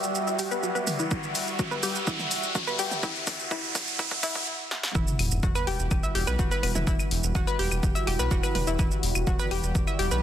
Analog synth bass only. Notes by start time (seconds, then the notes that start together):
4.95 E1
5.19 E1
5.31 E1
5.43 E1
5.67 E1
5.79 E1
5.91 E1
6.15 E1
6.27 B1
6.39 E1
6.63 E1
6.75 E1
6.87 E1
7.11 E1
7.23 E1
7.35 E1
7.59 E1
7.71 E1
7.83 E1
8.07 E1
8.19 B1
8.31 E1
8.55 E1
8.67 E1
8.79 E1
9.03 E1
9.15 E1
9.27 E1
9.51 E1
9.63 E1
9.75 E1
9.99 E1
10.11 B1